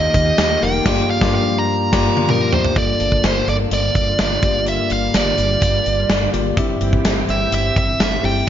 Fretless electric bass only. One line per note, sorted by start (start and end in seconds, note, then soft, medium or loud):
0.14 0.32 D#2 loud
0.38 0.55 D#2 loud
0.62 0.79 F1 medium
0.86 1.02 G1 loud
1.22 1.38 G1 loud
1.93 2.09 G1 medium
2.76 2.93 G1 medium
3.00 3.17 G1 medium
3.24 3.41 G1 loud
3.48 3.65 G1 medium
3.71 3.88 G1 medium
3.95 4.12 G1 medium
4.19 4.36 G1 loud
4.43 4.77 G1 medium
4.91 5.08 G1 medium
5.14 5.31 G1 medium
5.38 5.55 G1 medium
5.62 5.79 G1 loud
5.86 6.03 G1 medium
6.10 6.27 G1 loud
6.34 6.51 G1 medium
6.57 6.74 G1 loud
6.81 6.98 G1 loud
7.05 7.22 G1 medium
7.29 7.46 G1 medium
7.52 7.69 G1 medium
7.76 7.93 G1 loud
8.00 8.17 G1 medium
8.24 8.41 G1 loud